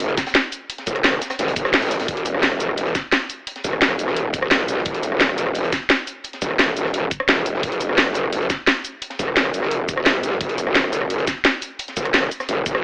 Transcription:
Already playing: F#1
0.00 closed hi-hat
0.17 kick, snare, closed hi-hat, shaker
0.26 snare, closed hi-hat
0.34 snare, closed hi-hat
0.52 closed hi-hat, shaker
0.70 closed hi-hat
0.78 snare, closed hi-hat
0.86 F#1, kick, snare, closed hi-hat, shaker
0.96 cross-stick, closed hi-hat
1.04 snare, closed hi-hat
1.13 cross-stick
1.21 snare, closed hi-hat, shaker
1.30 cross-stick, snare, closed hi-hat, shaker
1.39 F#1, snare, closed hi-hat, shaker
1.47 snare, closed hi-hat
1.56 A1, kick, closed hi-hat, shaker
1.65 cross-stick, closed hi-hat
1.73 snare, closed hi-hat
1.78 snare, closed hi-hat
1.82 snare, closed hi-hat
1.86 snare, closed hi-hat
1.90 snare, closed hi-hat, shaker
2.00 snare, closed hi-hat
2.08 E1, kick, closed hi-hat
2.17 closed hi-hat
2.25 snare, closed hi-hat, shaker
2.34 cross-stick
2.43 snare, closed hi-hat
2.52 cross-stick
2.60 closed hi-hat, shaker
2.69 cross-stick
2.77 closed hi-hat
2.87 closed hi-hat
2.95 kick, snare, closed hi-hat, shaker
3.12 snare, closed hi-hat
3.30 closed hi-hat, shaker
3.47 closed hi-hat
3.56 snare, closed hi-hat
3.64 E1, kick, snare, closed hi-hat, shaker
3.73 cross-stick
3.81 snare, closed hi-hat
3.90 cross-stick
3.99 E1, closed hi-hat, shaker
4.07 cross-stick, snare
4.16 closed hi-hat
4.34 kick, closed hi-hat, shaker
4.42 cross-stick
4.51 B1, snare, closed hi-hat
4.68 closed hi-hat, shaker
4.77 snare
4.85 E1, kick, closed hi-hat
4.95 closed hi-hat
5.03 snare, closed hi-hat, shaker
5.12 cross-stick
5.20 snare, closed hi-hat
5.29 cross-stick
5.38 closed hi-hat, shaker
5.47 cross-stick
5.55 closed hi-hat
5.64 closed hi-hat
5.72 kick, snare, closed hi-hat, shaker
5.89 snare, closed hi-hat
6.07 closed hi-hat, shaker
6.24 closed hi-hat
6.33 snare, closed hi-hat
6.42 E1, kick, snare, closed hi-hat, shaker
6.51 cross-stick
6.59 snare, closed hi-hat
6.68 cross-stick
6.76 E1, closed hi-hat, shaker
6.85 cross-stick, snare
6.94 closed hi-hat
7.11 kick, closed hi-hat, shaker
7.20 cross-stick
7.29 E1, snare, closed hi-hat
7.46 closed hi-hat, shaker
7.54 snare
7.63 F#1, kick, closed hi-hat
7.72 closed hi-hat
7.80 snare, closed hi-hat, shaker
7.89 cross-stick
7.97 snare, closed hi-hat
8.07 cross-stick
8.14 closed hi-hat, shaker
8.24 cross-stick
8.33 closed hi-hat
8.42 closed hi-hat
8.49 kick, snare, closed hi-hat, shaker
8.67 snare, closed hi-hat
8.84 closed hi-hat, shaker
9.02 closed hi-hat
9.10 snare, closed hi-hat
9.19 F#1, kick, snare, closed hi-hat, shaker
9.28 cross-stick
9.37 snare, closed hi-hat
9.45 cross-stick
9.54 F#1, closed hi-hat, shaker
9.63 cross-stick, snare
9.71 closed hi-hat
9.89 kick, closed hi-hat, shaker
9.97 cross-stick
10.05 C2, snare, closed hi-hat
10.23 closed hi-hat, shaker
10.31 snare
10.41 F#1, kick, closed hi-hat
10.49 closed hi-hat
10.57 snare, closed hi-hat, shaker
10.67 cross-stick
10.75 snare, closed hi-hat
10.84 cross-stick
10.93 closed hi-hat, shaker
11.01 cross-stick
11.10 closed hi-hat
11.18 closed hi-hat
11.27 kick, snare, closed hi-hat, shaker
11.44 snare, closed hi-hat
11.62 closed hi-hat, shaker
11.79 closed hi-hat
11.88 snare, closed hi-hat
11.96 F#1, kick, snare, closed hi-hat, shaker
12.05 cross-stick, closed hi-hat
12.14 snare, closed hi-hat
12.23 cross-stick
12.31 closed hi-hat, shaker
12.40 cross-stick, snare, shaker
12.49 F#1, closed hi-hat, shaker
12.66 A1, kick, closed hi-hat, shaker
12.75 cross-stick

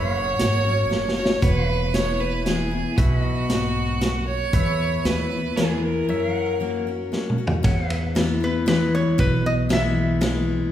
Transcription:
Already playing: F#1 F#2 B4 C#5 E5
0.13 C#5 F#5
0.39 G#1 F#3 A#3 C#4 F#4, snare, closed hi-hat
0.64 C#4 F#4
0.90 F#1 F#3 A#3 C#4 F#4, snare
1.08 snare
1.16 C#4 F#4 C#5
1.25 snare
1.42 E1 E2 B4 C#5 F#5, kick, closed hi-hat
1.67 B4 E5
1.93 E3 G#3 B3 E4 C#5, snare, closed hi-hat
2.20 B3 E4 B4
2.46 E3 G#3 B3 E4 G#4, snare, closed hi-hat
2.71 B3 E4
2.97 B1 B2 F#4 B4 E5, kick, closed hi-hat
3.19 D#5
3.50 G#2, snare, closed hi-hat
4.01 F#2, snare, closed hi-hat
4.27 C#5
4.53 E2 B4 E5, kick, closed hi-hat
5.05 D#2 E3 G#3 B3 E4 B4, snare, closed hi-hat
5.31 B3 E4
5.57 E2 E3 G#3 B3 E4 G#4, snare, closed hi-hat
5.84 A#4
6.09 F#2 C#5 E5
6.35 F#5
6.60 F#3 A#3 C#4 F#4
6.87 C#4 F#4
7.12 F#3 A#3 C#4 F#4, snare
7.30 mid tom
7.38 C#4 F#4
7.47 floor tom
7.63 E2 C#5 F#5, kick, ride
7.89 B4 E5, ride
8.15 E3 G#3 B3 E4, snare, ride
8.41 B3 E4 B4
8.66 E3 G#3 B3 E4 B4, snare, ride
8.95 C#5
9.18 B1 B2 B4, kick, ride
9.46 D#5
9.69 E3 G#3 B3 E4 E5, snare, ride
10.21 E3 G#3 B3 E4, snare, ride

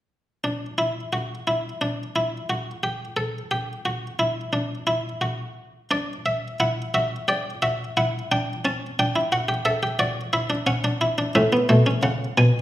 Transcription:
0.44 D4
0.78 E4
1.13 F#4
1.47 E4
1.81 D4
2.16 E4
2.50 F#4
2.83 G4
3.17 A4
3.51 G4
3.85 F#4
4.19 E4
4.53 D4
4.87 E4
5.21 F#4
5.91 D4 D5
6.26 E5
6.60 E4 F#5
6.94 F#4 E5
7.28 G4 D5
7.62 F#4 E5
7.97 E4 F#5
8.32 D4 G5
8.65 C#4 A5
8.99 D4 G5
9.16 E4
9.32 F#4 F#5
9.49 G4
9.65 A4 E5
9.83 G4
9.99 F#4 D5
10.33 E4 E5
10.50 D4
10.67 C#4 F#5
10.84 D4
11.01 E4
11.18 D4
11.35 A2 C#4 E5
11.53 B3
11.69 B2 A3
11.86 C#4
12.03 C#3 F#5
12.38 B2 G#5

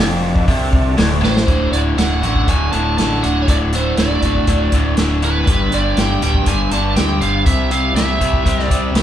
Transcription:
Already playing: F1 D4 F#4 A4 D5
0.00 F2
0.36 kick
0.48 C2 C3, kick, open hi-hat
0.73 kick
0.97 D1 D2, snare, open hi-hat
1.22 A1 A2 C5, snare
1.37 snare
1.47 D1 D2 A2 D3 D4 F#4 A4 D5, kick, closed hi-hat
1.71 D1 D2 A2 D3 D5, closed hi-hat
1.96 D1 D2 A2 D3 F#5, snare, closed hi-hat
2.22 A1 D2 A2 D3 F#5, closed hi-hat
2.35 kick
2.48 D1 D2 A2 D3 G#5, kick, closed hi-hat
2.72 D1 D2 A2 D3 A5, closed hi-hat
2.98 A1 D2 A2 D3 A5, snare, closed hi-hat
3.22 D1 D2 A2 D3 F#5, closed hi-hat
3.42 C#5
3.48 D1 D2 A2 D3 D5, kick, closed hi-hat
3.73 D2 A2 D3 C5, closed hi-hat
3.97 D1 D2 A2 D3 D5, snare, closed hi-hat
4.22 D1 D2 A2 D3, kick, closed hi-hat
4.35 kick
4.47 D1 D2 A2 D3, kick, closed hi-hat
4.72 D1 D2 A2 D3, kick, closed hi-hat
4.97 D1 D2 A2 D3, snare, closed hi-hat
5.22 D2 A2 D3 B4, closed hi-hat
5.46 G1 G2 D3 G3 D4 G4 B4 D5, kick, closed hi-hat
5.72 G1 G2 D3 G3 D5, closed hi-hat
5.97 G1 G2 D3 G3 G5, snare, closed hi-hat
6.22 D1 G2 D3 G3 G5, closed hi-hat
6.34 kick
6.46 G1 G2 D3 G3 G#5, kick, closed hi-hat
6.71 G1 G2 D3 G3 A5, closed hi-hat
6.96 D2 G2 D3 G3 G5, snare, closed hi-hat
7.20 G1 G2 D3 G3 F5, closed hi-hat
7.46 C2 C3 G3 C4 E4 G4 C5 E5, kick, closed hi-hat
7.71 C3 G3 C4 F5, closed hi-hat
7.94 C2 C3 G3 C4 E5, snare, closed hi-hat
8.20 C2 C3 G3 C4, kick, closed hi-hat
8.33 kick
8.45 C2 C3 G3 C4, kick, closed hi-hat
8.59 D5, snare
8.70 C2 C3 G3 C4, kick, closed hi-hat
8.95 C2 C3 G3 C4, snare, closed hi-hat

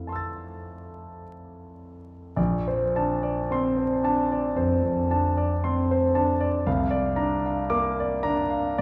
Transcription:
Already playing: A3 C4 E4 A4 F5
0.07 A5 C6
0.12 E6 A6
2.36 A#1 D5
2.68 C5
2.96 D4 A5
3.23 D5
3.51 C4 C6
3.77 C5
4.04 D4 A5
4.32 D5
4.56 F2 C5
4.82 F2
5.10 D4 A5
5.37 D5
5.64 C4 C6
5.91 C5
6.15 D4 A5
6.40 D5
6.67 C2 F5
6.91 D5
7.16 D4 A#5
7.46 F5
7.70 A#3 D6
8.00 D5
8.23 D4 A#5
8.50 F5
8.78 D5 A#5

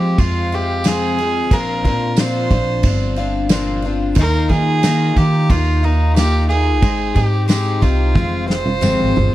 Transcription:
Already playing: F3 G#3 C4 F4 G4
0.18 F2 F3 G#3 C4 F4, kick, crash
0.52 F3 G#3 C4 F4 G4, crash
0.84 F2 C3 F3 G#3 C4 F4 G#4, snare, tambourine, crash
1.19 F3 G#3 C4 F4, crash
1.51 A#1 A#2 F3 C4 D4 F4 A#4, kick, crash
1.84 A#2 C4 D4 F4, kick, crash
2.17 A#2 F3 C4 D4 F4, snare, tambourine, crash
2.21 C5
2.51 A#1 C4 D4 F4, kick, crash
2.83 G1 F3 C4 D4 F4, kick, crash
3.16 C4 D4 F4, crash
3.49 A#2 F3 C4 D4 F4, snare, tambourine, crash
3.82 D4 F4, crash
3.87 C4
4.15 D#2 D#3 A#3, kick, crash
4.19 D#4 F4 A#4
4.49 D#3 A#3 D#4 F4 G#4, kick, crash
4.83 D#3 A#3 D#4 F4, snare, tambourine, crash
5.16 D#3 A#3 D#4 F4 G4, kick, crash
5.50 D#2 D#3 A#3 D#4 F4, kick, crash
5.83 A#3 D#4 F4, crash
6.16 D#3 A#3 D#4 F4 G4, snare, tambourine, crash
6.49 A#3 D#4 F4 G#4, crash
6.82 G#1 G#3 C4 D#4, kick, crash
7.14 G#2 C4 D#4 G4, kick, crash
7.48 G#3 C4 D#4 G4, snare, tambourine, crash
7.81 C2 C4 D#4 F4 G4, kick, crash
8.15 F1 F3 G#3 C4 F4, kick, high tom
8.48 F3 G#3 C4 F4 C5, snare
8.66 mid tom
8.81 F2 C3 F3 G#3 C4 F4, mid tom, tambourine
9.00 G#1
9.16 G1 F3 G#3 C4 F4, floor tom

